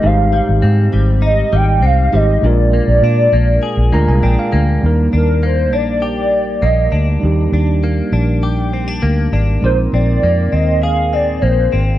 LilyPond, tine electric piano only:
\new Staff \with { instrumentName = "Tine electric piano" } { \time 4/4 \key ees \major \tempo 4 = 100 << { r1 | r2 r8 bes''16 aes''16 g''16 f''8. | r1 | r1 |
r1 | } \\ { <aes ees' g' c''>2.~ <aes ees' g' c''>8 <aes ees' g' c''>8 | <aes d' f' bes'>2~ <aes d' f' bes'>8 <aes d' f' bes'>4. | <g bes ees' bes'>1 | <g d' ees' g'>1 |
<aes c' ees' bes'>1 | } >> }